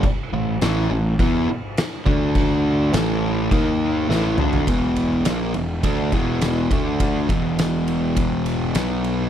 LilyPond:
<<
  \new Staff \with { instrumentName = "Distorted electric guitar" } { \clef bass \time 4/4 \key a \dorian \tempo 4 = 103 r8 <a, e>8 <a, e a>8 <a, e>8 <e b e'>8 r4 <d a d'>8~ | <d a d'>4 <a, e a>4 <dis ais dis'>4 <a, e a>8 <d a d'>8 | <e, b, e>4 <ais, f ais>8 <e, b,>8 <d a d'>8 <e, b, e>4 <d a d'>8~ | <d a d'>8 <e, b, e>2~ <e, b, e>8 <b, fis b>4 | }
  \new Staff \with { instrumentName = "Fingered electric bass" } { \clef bass \time 4/4 \key a \dorian r8 a,,8 a,,8 a,,8 e,8 r4 d,8~ | d,4 a,,4 dis,4 a,,8 d,8 | e,,4 ais,,8 e,,8 d,8 e,,4 d,8~ | d,8 e,,2~ e,,8 b,,4 | }
  \new DrumStaff \with { instrumentName = "Drums" } \drummode { \time 4/4 <cymc bd>4 <cymc sn>4 <cymc bd>4 <cymc sn>8 bd8 | <cymc bd>4 <cymc sn>4 <cymc bd>4 sn8 toml16 tomfh16 | <bd cymr>8 cymr8 <cymr sn>8 cymr8 <bd cymr>8 <bd cymr>8 <cymr sn>8 <bd cymr>8 | <bd cymr>8 <bd cymr>8 <cymr sn>8 cymr8 <bd cymr>8 cymr8 <cymr sn>8 cymr8 | }
>>